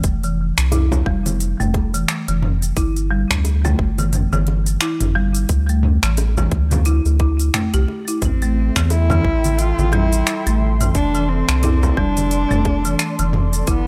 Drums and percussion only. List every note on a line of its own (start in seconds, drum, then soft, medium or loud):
0.04 kick loud
0.04 closed hi-hat medium
0.04 cabasa medium
0.23 closed hi-hat soft
0.23 cabasa soft
0.58 finger snap medium
0.58 closed hi-hat soft
0.58 cabasa medium
0.72 closed hi-hat medium
0.72 mid tom medium
0.72 high bongo medium
0.72 cabasa medium
0.92 low conga medium
0.92 cabasa soft
1.06 kick loud
1.26 closed hi-hat soft
1.26 high conga medium
1.26 cabasa medium
1.40 closed hi-hat medium
1.40 cabasa medium
1.60 mid tom medium
1.60 cabasa soft
1.74 kick loud
1.74 closed hi-hat soft
1.74 high bongo medium
1.94 closed hi-hat soft
1.94 cabasa medium
2.08 finger snap medium
2.08 closed hi-hat medium
2.08 cabasa medium
2.28 closed hi-hat medium
2.28 high conga soft
2.28 cabasa soft
2.42 mid tom medium
2.42 high bongo soft
2.62 closed hi-hat soft
2.62 cabasa medium
2.77 kick loud
2.77 closed hi-hat soft
2.77 cabasa medium
2.96 closed hi-hat soft
2.96 cabasa soft
3.31 finger snap medium
3.31 kick medium
3.31 closed hi-hat soft
3.31 mid tom medium
3.31 cabasa medium
3.45 closed hi-hat soft
3.45 high bongo medium
3.45 cabasa medium
3.65 high conga medium
3.65 low conga medium
3.65 cabasa soft
3.79 kick loud
3.98 closed hi-hat soft
3.98 high conga medium
3.98 cabasa medium
4.13 closed hi-hat soft
4.13 mid tom medium
4.13 cabasa medium
4.33 high conga medium
4.33 cabasa soft
4.47 closed hi-hat soft
4.47 high bongo soft
4.66 closed hi-hat soft
4.66 cabasa medium
4.81 finger snap medium
4.81 closed hi-hat medium
4.81 cabasa medium
5.01 closed hi-hat soft
5.01 mid tom medium
5.01 high bongo soft
5.01 cabasa soft
5.16 high conga soft
5.35 closed hi-hat soft
5.35 cabasa medium
5.49 kick loud
5.49 closed hi-hat medium
5.49 cabasa medium
5.69 closed hi-hat soft
5.69 cabasa soft
5.83 mid tom medium
6.03 finger snap medium
6.03 closed hi-hat soft
6.03 cabasa medium
6.17 closed hi-hat soft
6.17 high bongo medium
6.17 cabasa medium
6.37 low conga medium
6.37 cabasa soft
6.51 kick loud
6.51 closed hi-hat soft
6.71 closed hi-hat soft
6.71 mid tom medium
6.71 high conga medium
6.71 low conga medium
6.71 cabasa medium
6.85 closed hi-hat soft
6.85 cabasa medium
7.06 high bongo soft
7.06 cabasa soft
7.20 kick loud
7.20 closed hi-hat soft
7.20 high bongo soft
7.40 closed hi-hat soft
7.40 cabasa medium
7.54 finger snap medium
7.54 closed hi-hat medium
7.54 mid tom medium
7.54 cabasa medium
7.74 closed hi-hat soft
7.74 high conga soft
7.74 cabasa soft
7.88 high bongo soft
8.08 closed hi-hat soft
8.08 cabasa medium
8.22 kick loud
8.22 closed hi-hat soft
8.22 mid tom medium
8.22 cabasa medium
8.42 closed hi-hat soft
8.42 cabasa soft
8.76 finger snap medium
8.76 kick medium
8.76 closed hi-hat soft
8.76 cabasa medium
8.90 closed hi-hat soft
8.90 high bongo medium
8.90 cabasa soft
9.10 mid tom medium
9.10 high conga medium
9.10 low conga medium
9.10 cabasa soft
9.24 kick loud
9.44 closed hi-hat soft
9.44 high conga medium
9.44 cabasa medium
9.59 closed hi-hat medium
9.59 cabasa medium
9.79 high conga medium
9.79 cabasa soft
9.92 closed hi-hat soft
9.92 mid tom medium
9.92 high bongo soft
10.13 closed hi-hat soft
10.13 cabasa medium
10.27 finger snap medium
10.27 closed hi-hat medium
10.27 cabasa medium
10.46 closed hi-hat soft
10.46 high bongo soft
10.46 cabasa soft
10.61 high conga soft
10.81 closed hi-hat soft
10.81 mid tom medium
10.81 cabasa medium
10.95 kick loud
10.95 closed hi-hat soft
10.95 cabasa soft
11.15 closed hi-hat soft
11.15 cabasa soft
11.49 finger snap medium
11.49 closed hi-hat soft
11.49 cabasa medium
11.63 closed hi-hat soft
11.63 mid tom medium
11.63 high bongo medium
11.63 cabasa medium
11.83 low conga medium
11.83 cabasa soft
11.97 kick loud
12.17 closed hi-hat soft
12.17 high conga medium
12.17 cabasa medium
12.31 closed hi-hat medium
12.31 cabasa medium
12.51 mid tom medium
12.51 cabasa soft
12.65 kick medium
12.65 closed hi-hat soft
12.65 high bongo soft
12.85 closed hi-hat soft
12.85 cabasa medium
12.99 finger snap medium
12.99 closed hi-hat medium
12.99 cabasa medium
13.19 closed hi-hat soft
13.19 high conga soft
13.19 cabasa soft
13.33 mid tom medium
13.33 high bongo soft
13.53 closed hi-hat soft
13.53 cabasa medium
13.67 kick loud
13.67 closed hi-hat medium
13.67 cabasa soft